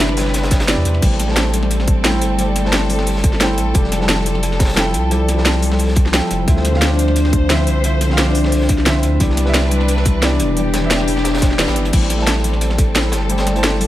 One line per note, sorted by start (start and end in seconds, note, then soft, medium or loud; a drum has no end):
0.00 0.76 G1 medium
0.00 0.67 C3 loud
0.00 0.99 E3 medium
0.00 0.16 G3 loud
0.00 0.77 A3 medium
0.00 0.68 B3 medium
0.00 0.85 C4 loud
0.00 0.99 D4 medium
0.00 2.12 D4 loud
0.00 0.57 E4 loud
0.00 0.69 E4 medium
0.00 0.99 B4 loud
0.00 1.04 B4 medium
0.00 0.70 D5 loud
0.00 1.04 E5 loud
0.00 snare loud
0.00 closed hi-hat medium
0.09 snare medium
0.17 1.01 G3 medium
0.17 snare loud
0.17 closed hi-hat medium
0.17 open hi-hat medium
0.26 snare medium
0.26 snare soft
0.34 snare medium
0.34 closed hi-hat medium
0.43 snare loud
0.43 closed hi-hat medium
0.51 kick loud
0.51 snare loud
0.51 closed hi-hat loud
0.51 closed hi-hat medium
0.60 snare soft
0.60 snare loud
0.60 closed hi-hat medium
0.67 0.99 C3 loud
0.67 1.00 B3 medium
0.67 1.00 E4 medium
0.67 1.01 D5 loud
0.67 snare loud
0.67 closed hi-hat loud
0.67 closed hi-hat medium
0.77 0.84 E2 medium
0.85 1.01 E2 medium
0.85 1.36 C4 loud
0.85 closed hi-hat loud
0.85 closed hi-hat medium
0.94 snare soft
1.01 2.23 A1 loud
1.01 6.44 G3 medium
1.01 1.52 G3 loud
1.01 1.24 A3 medium
1.01 3.72 C4 medium
1.01 1.26 E4 medium
1.01 6.44 A4 medium
1.01 1.26 C5 medium
1.01 1.27 G5 medium
1.01 kick loud
1.01 closed hi-hat medium
1.01 crash medium
1.11 snare soft
1.19 snare soft
1.19 closed hi-hat medium
1.26 2.01 A3 medium
1.26 2.02 E4 medium
1.26 2.03 C5 medium
1.26 snare medium
1.31 2.04 A5 loud
1.36 2.72 C4 loud
1.36 snare loud
1.36 closed hi-hat medium
1.53 2.37 G3 medium
1.53 closed hi-hat medium
1.53 closed hi-hat loud
1.63 snare soft
1.71 closed hi-hat medium
1.80 snare soft
1.88 kick loud
1.88 closed hi-hat loud
2.03 2.36 A3 loud
2.03 2.37 E4 medium
2.03 3.40 E4 loud
2.03 2.37 C5 medium
2.03 2.37 G5 loud
2.03 snare loud
2.03 closed hi-hat medium
2.21 3.59 G1 medium
2.21 closed hi-hat medium
2.21 closed hi-hat loud
2.37 2.88 G3 loud
2.37 2.60 A3 medium
2.37 2.62 E4 medium
2.37 2.63 C5 medium
2.37 2.63 G5 medium
2.37 closed hi-hat medium
2.56 snare soft
2.56 closed hi-hat medium
2.62 3.37 A3 medium
2.62 3.38 E4 medium
2.62 3.39 C5 medium
2.62 snare medium
2.68 3.40 A5 loud
2.72 4.08 C4 loud
2.72 snare loud
2.72 closed hi-hat medium
2.89 3.73 G3 medium
2.89 closed hi-hat medium
2.89 open hi-hat medium
2.98 snare medium
2.98 snare soft
3.06 closed hi-hat medium
3.06 open hi-hat medium
3.16 snare soft
3.24 kick loud
3.24 closed hi-hat loud
3.24 closed hi-hat medium
3.33 snare soft
3.39 3.72 A3 loud
3.39 3.73 E4 medium
3.39 4.76 E4 loud
3.39 3.73 C5 medium
3.39 3.74 G5 loud
3.39 snare loud
3.39 closed hi-hat medium
3.58 3.73 A1 loud
3.58 closed hi-hat medium
3.58 closed hi-hat loud
3.73 4.96 F1 loud
3.73 3.97 F3 medium
3.73 4.25 G3 loud
3.73 3.99 E4 medium
3.73 3.99 A4 medium
3.73 4.00 G5 medium
3.73 kick loud
3.73 closed hi-hat medium
3.84 snare soft
3.92 snare soft
3.92 closed hi-hat medium
3.98 4.74 F3 medium
3.98 4.75 E4 medium
3.98 4.76 A4 medium
3.98 snare medium
4.04 4.77 A5 loud
4.09 5.45 C4 loud
4.09 snare loud
4.09 closed hi-hat medium
4.26 5.10 G3 medium
4.26 closed hi-hat medium
4.35 snare soft
4.43 closed hi-hat medium
4.52 snare soft
4.59 kick loud
4.59 snare medium
4.59 closed hi-hat medium
4.65 snare loud
4.65 closed hi-hat medium
4.69 snare medium
4.69 closed hi-hat medium
4.73 5.08 F3 loud
4.73 snare medium
4.73 closed hi-hat medium
4.77 5.09 E4 loud
4.77 6.13 E4 loud
4.77 5.10 A4 medium
4.77 5.10 G5 loud
4.77 snare loud
4.77 closed hi-hat medium
4.94 6.21 C2 medium
4.94 closed hi-hat medium
5.10 5.33 F3 medium
5.10 5.61 G3 loud
5.10 5.35 E4 medium
5.10 5.35 A4 medium
5.10 5.36 G5 medium
5.10 closed hi-hat medium
5.28 snare soft
5.28 closed hi-hat medium
5.34 6.10 F3 medium
5.34 6.11 E4 medium
5.34 6.12 A4 medium
5.34 snare medium
5.40 6.13 A5 loud
5.45 8.45 C4 loud
5.45 snare loud
5.45 closed hi-hat medium
5.62 6.53 G3 medium
5.62 closed hi-hat medium
5.62 open hi-hat medium
5.72 snare medium
5.72 snare soft
5.79 closed hi-hat medium
5.79 open hi-hat medium
5.88 snare soft
5.96 kick loud
5.96 closed hi-hat medium
6.06 snare soft
6.12 6.45 F3 loud
6.12 6.46 E4 medium
6.12 7.49 E4 loud
6.12 6.46 A4 medium
6.12 6.47 G5 loud
6.12 snare loud
6.12 closed hi-hat medium
6.30 6.46 F1 medium
6.30 closed hi-hat medium
6.46 7.69 D2 loud
6.46 6.69 D3 medium
6.46 9.18 F3 medium
6.46 6.98 A3 loud
6.46 6.71 C4 medium
6.46 6.72 F4 medium
6.46 9.18 C5 medium
6.46 6.72 E5 medium
6.46 kick loud
6.46 closed hi-hat medium
6.56 snare soft
6.65 snare soft
6.65 closed hi-hat medium
6.71 7.47 D3 medium
6.71 7.48 C4 medium
6.71 7.48 F4 medium
6.71 snare soft
6.77 7.49 F5 loud
6.82 8.17 D4 loud
6.82 snare loud
6.82 closed hi-hat medium
6.99 7.83 A3 medium
6.99 closed hi-hat medium
7.08 snare soft
7.16 closed hi-hat medium
7.25 snare soft
7.33 kick loud
7.33 closed hi-hat medium
7.49 7.81 D3 loud
7.49 7.82 F3 medium
7.49 7.82 C4 loud
7.49 8.86 E4 loud
7.49 7.83 E5 loud
7.49 snare loud
7.49 closed hi-hat medium
7.67 9.05 C2 medium
7.67 closed hi-hat medium
7.83 8.06 D3 medium
7.83 8.35 A3 loud
7.83 8.08 C4 medium
7.83 8.08 F4 medium
7.83 8.09 E5 medium
7.83 closed hi-hat medium
8.01 snare soft
8.01 closed hi-hat medium
8.07 8.83 D3 medium
8.07 8.84 C4 medium
8.07 8.85 F4 medium
8.07 snare medium
8.13 8.86 F5 loud
8.17 10.22 D4 loud
8.17 snare loud
8.17 closed hi-hat medium
8.35 11.68 A3 medium
8.35 closed hi-hat medium
8.35 open hi-hat medium
8.44 snare medium
8.44 snare soft
8.52 closed hi-hat medium
8.52 open hi-hat medium
8.61 snare soft
8.69 kick loud
8.69 closed hi-hat medium
8.78 snare soft
8.85 9.18 D3 loud
8.85 9.19 F3 medium
8.85 9.18 C4 loud
8.85 11.47 E4 loud
8.85 9.19 E5 loud
8.85 snare loud
8.85 closed hi-hat medium
9.03 9.19 D2 loud
9.03 closed hi-hat medium
9.19 10.41 C2 loud
9.19 9.42 C3 medium
9.19 11.90 E3 medium
9.19 9.70 G3 loud
9.19 9.44 B3 medium
9.19 10.55 D4 medium
9.19 9.45 E4 medium
9.19 10.55 B4 medium
9.19 9.45 D5 medium
9.19 kick loud
9.19 closed hi-hat medium
9.30 snare soft
9.37 snare soft
9.37 closed hi-hat medium
9.37 closed hi-hat loud
9.44 10.19 C3 medium
9.44 10.21 E4 medium
9.44 10.20 B4 medium
9.44 snare medium
9.49 10.22 E5 loud
9.54 12.27 C4 loud
9.54 snare loud
9.54 closed hi-hat medium
9.71 10.56 G3 medium
9.71 closed hi-hat medium
9.71 closed hi-hat loud
9.81 snare soft
9.88 closed hi-hat medium
9.97 snare soft
10.05 kick loud
10.05 closed hi-hat medium
10.05 closed hi-hat loud
10.21 10.54 C3 loud
10.21 10.55 B3 loud
10.21 10.90 D4 loud
10.21 10.55 E4 loud
10.21 10.56 D5 loud
10.21 snare loud
10.21 closed hi-hat medium
10.39 11.67 E1 medium
10.39 closed hi-hat medium
10.55 10.78 E3 medium
10.55 11.07 G3 loud
10.55 10.80 B3 medium
10.55 11.92 D4 medium
10.55 11.92 G4 medium
10.55 10.81 G4 medium
10.55 10.81 D5 medium
10.55 closed hi-hat medium
10.74 snare loud
10.74 snare soft
10.74 closed hi-hat loud
10.74 closed hi-hat medium
10.80 11.56 E3 medium
10.80 11.57 B3 medium
10.80 11.58 G4 medium
10.86 11.59 E5 loud
10.91 13.71 D4 loud
10.91 snare loud
10.91 closed hi-hat medium
10.91 closed hi-hat loud
11.00 snare medium
11.08 11.92 G3 medium
11.08 closed hi-hat medium
11.08 open hi-hat medium
11.17 snare medium
11.17 snare soft
11.24 snare loud
11.24 closed hi-hat medium
11.34 snare medium
11.34 closed hi-hat medium
11.37 snare loud
11.37 closed hi-hat medium
11.41 kick loud
11.41 snare loud
11.41 closed hi-hat loud
11.41 closed hi-hat medium
11.51 snare soft
11.58 11.90 E3 loud
11.58 11.91 B3 loud
11.58 12.95 E4 loud
11.58 11.91 G4 medium
11.58 11.92 D5 loud
11.58 snare loud
11.58 closed hi-hat medium
11.68 11.78 A1 medium
11.68 snare loud
11.68 closed hi-hat medium
11.76 11.92 G1 medium
11.76 closed hi-hat loud
11.85 snare soft
11.85 closed hi-hat medium
11.92 13.14 A1 loud
11.92 12.43 G3 loud
11.92 13.87 G3 medium
11.92 12.15 A3 medium
11.92 13.87 C4 medium
11.92 12.17 E4 medium
11.92 13.87 A4 medium
11.92 12.17 C5 medium
11.92 12.18 G5 medium
11.92 kick loud
11.92 closed hi-hat medium
11.92 crash loud
12.02 snare soft
12.09 snare soft
12.09 closed hi-hat medium
12.09 closed hi-hat loud
12.16 12.92 A3 medium
12.16 12.93 E4 medium
12.16 12.94 C5 medium
12.16 snare soft
12.22 12.95 A5 loud
12.27 13.63 C4 loud
12.27 snare loud
12.27 closed hi-hat loud
12.27 closed hi-hat medium
12.44 13.28 G3 medium
12.44 closed hi-hat loud
12.44 closed hi-hat medium
12.53 snare soft
12.61 closed hi-hat medium
12.70 snare soft
12.78 kick loud
12.78 closed hi-hat medium
12.78 closed hi-hat loud
12.95 13.87 E4 loud
12.95 snare loud
12.95 closed hi-hat loud
12.95 closed hi-hat medium
13.12 13.87 G1 medium
13.12 snare loud
13.12 closed hi-hat medium
13.12 closed hi-hat loud
13.28 13.79 G3 loud
13.28 13.51 A3 medium
13.28 13.53 E4 medium
13.28 13.54 C5 medium
13.28 13.54 G5 medium
13.28 closed hi-hat medium
13.38 snare loud
13.38 closed hi-hat medium
13.47 snare soft
13.47 closed hi-hat medium
13.53 13.87 A3 medium
13.53 13.87 E4 medium
13.53 13.87 C5 medium
13.53 closed hi-hat medium
13.58 13.87 A5 loud
13.63 13.87 C4 loud
13.63 snare loud
13.63 closed hi-hat medium
13.80 13.87 G3 medium
13.80 closed hi-hat medium
13.80 open hi-hat medium